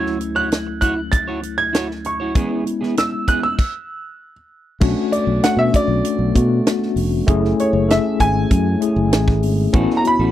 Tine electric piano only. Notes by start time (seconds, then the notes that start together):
Already playing: D2 F#3 A3 C#4 E4
2.35 G#3 B3 C#4 E4
4.80 A3 C#4 D4 F#4
5.43 A3 C#4 D4 F#4
6.35 A3 B3 D4 F#4
7.26 A3 C#4 E4 G#4
7.88 A3 C#4 E4 A4
8.81 A3 C#4 E4 G#4
9.73 B3 C#4 E4 F#4